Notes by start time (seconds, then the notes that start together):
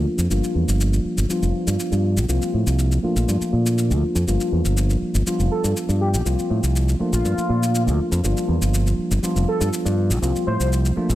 Already playing: F3 A3 A#3 D4 F4
0.06 muted fingered electric bass stroke
0.18 F2, shaker
0.29 G1 F3 G3 A#3 D4 F4, shaker
0.44 shaker
0.55 E2
0.68 G1, shaker
0.81 shaker
0.93 shaker
1.17 G1, shaker
1.29 F3 G3 B3 D4 F4, shaker
1.42 F1, shaker
1.67 G2, shaker
1.80 shaker
1.92 G2, shaker
2.17 B1, shaker
2.28 C2 F3 G3 A#3 C4 F4, shaker
2.42 muted fingered electric bass stroke, shaker
2.54 A2
2.66 C2, shaker
2.79 shaker
2.92 shaker
3.02 F3 A3 A#3 D4 F4, muted fingered electric bass stroke
3.16 A#1, shaker
3.28 G2, shaker
3.41 muted fingered electric bass stroke, shaker
3.53 A#2
3.66 shaker
3.78 shaker
3.90 D2, shaker
4.03 muted fingered electric bass stroke
4.15 F2, shaker
4.27 G1 F3 G3 A#3 D4 F4, shaker
4.40 shaker
4.52 E2
4.65 G1, shaker
4.77 shaker
4.90 shaker
5.02 muted fingered electric bass stroke
5.14 G1, shaker
5.26 F3 G3 B3 D4 F4, shaker
5.39 F1, shaker
5.51 A4
5.64 G2, shaker
5.77 shaker
5.89 G2, shaker
6.01 G4
6.14 B1 G4, shaker
6.25 C2 F3 G3 A#3 C4 F4, shaker
6.39 shaker
6.50 A2
6.63 C2, shaker
6.76 shaker
6.89 shaker
6.99 F3 A3 A#3 D4 F4, muted fingered electric bass stroke
7.13 A#1 F4, shaker
7.25 G2, shaker
7.37 muted fingered electric bass stroke, shaker
7.49 A#2
7.63 shaker
7.75 shaker
7.87 D2, shaker
7.99 muted fingered electric bass stroke
8.12 F2, shaker
8.23 G1 F3 G3 A#3 D4 F4, shaker
8.37 shaker
8.48 E2
8.61 G1, shaker
8.74 shaker
8.87 shaker
8.98 muted fingered electric bass stroke
9.11 G1, shaker
9.22 F3 G3 B3 D4 F4, muted fingered electric bass stroke, shaker
9.36 F1, shaker
9.48 A4
9.61 G2, shaker
9.73 shaker
9.85 G2, shaker
10.10 B1, shaker
10.21 C2 F3 G3 A#3 C4 F4, shaker
10.36 shaker
10.47 A2 C5
10.60 C2, shaker
10.73 shaker
10.85 shaker
10.96 F3 A3 A#3 D4 F4, muted fingered electric bass stroke
11.09 A#1, shaker